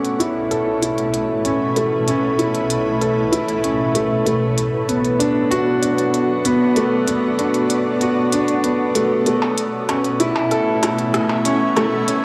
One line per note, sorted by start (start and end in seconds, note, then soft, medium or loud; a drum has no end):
0.00 4.27 B2 medium
0.00 1.76 A3 medium
0.00 4.26 A3 medium
0.00 0.10 B3 medium
0.00 0.19 C#4 medium
0.00 1.23 F#4 medium
0.00 9.27 C#5 medium
0.05 closed hi-hat soft
0.11 6.27 B4 medium
0.20 0.50 E4 medium
0.20 closed hi-hat medium
0.31 6.27 E4 medium
0.51 0.81 A4 medium
0.51 closed hi-hat soft
0.82 1.12 E4 medium
0.82 closed hi-hat medium
0.98 closed hi-hat soft
1.14 closed hi-hat soft
1.45 1.63 C#4 medium
1.45 closed hi-hat medium
1.76 1.94 A3 medium
1.76 closed hi-hat soft
2.08 2.37 C#4 medium
2.08 closed hi-hat medium
2.39 2.69 E4 medium
2.39 closed hi-hat soft
2.55 closed hi-hat soft
2.70 closed hi-hat medium
3.01 3.31 A4 medium
3.01 closed hi-hat soft
3.32 3.50 E4 medium
3.32 closed hi-hat medium
3.48 closed hi-hat soft
3.64 3.94 C#4 medium
3.64 closed hi-hat soft
3.94 4.13 A3 medium
3.94 closed hi-hat medium
4.26 4.44 A3 medium
4.26 11.03 B3 medium
4.26 closed hi-hat soft
4.38 10.74 F#4 medium
4.58 closed hi-hat medium
4.89 5.18 B3 medium
4.89 closed hi-hat soft
5.05 closed hi-hat soft
5.19 5.50 D4 medium
5.19 closed hi-hat medium
5.46 9.26 D5 medium
5.51 5.81 F#4 medium
5.51 closed hi-hat soft
5.82 6.12 D4 medium
5.82 closed hi-hat medium
5.98 closed hi-hat soft
6.14 closed hi-hat soft
6.45 6.63 B3 medium
6.45 closed hi-hat medium
6.76 6.94 A3 loud
6.76 closed hi-hat soft
7.07 7.37 B3 medium
7.07 closed hi-hat medium
7.39 7.69 D4 medium
7.39 closed hi-hat soft
7.54 closed hi-hat soft
7.70 closed hi-hat medium
8.01 8.31 F#4 medium
8.01 closed hi-hat soft
8.32 8.51 D4 medium
8.32 closed hi-hat medium
8.48 closed hi-hat soft
8.64 8.94 B3 medium
8.64 closed hi-hat soft
8.95 9.13 A3 medium
8.95 closed hi-hat medium
9.26 12.25 B2 medium
9.26 9.44 A3 medium
9.26 closed hi-hat soft
9.42 percussion blips medium
9.57 12.25 A3 medium
9.57 closed hi-hat medium
9.78 12.25 E4 medium
9.84 12.25 C#5 medium
9.89 10.19 C#4 medium
9.89 closed hi-hat soft
9.89 percussion blips medium
10.04 closed hi-hat soft
10.20 10.50 E4 medium
10.20 closed hi-hat medium
10.36 percussion blips medium
10.51 10.81 A4 medium
10.51 closed hi-hat soft
10.83 11.13 E4 medium
10.83 closed hi-hat medium
10.83 percussion blips medium
10.99 closed hi-hat soft
11.05 12.25 B4 medium
11.14 cross-stick medium
11.14 closed hi-hat soft
11.29 percussion blips medium
11.45 11.63 C#4 medium
11.45 closed hi-hat medium
11.76 11.94 A3 loud
11.76 closed hi-hat soft
11.76 percussion blips medium
12.08 12.25 C#4 loud
12.08 closed hi-hat medium